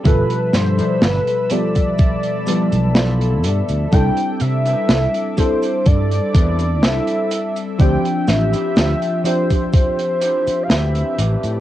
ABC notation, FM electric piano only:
X:1
M:4/4
L:1/8
Q:1/4=62
K:Ddor
V:1 name="FM electric piano"
[B,,F,G,Ae]3 [F,G,B,Ae]2 [F,G,B,A]3 | [G,CDEA]3 [G,CDEA]4- [G,CDEA] | [F,CDGe]3 [F,CDGe]4 z |]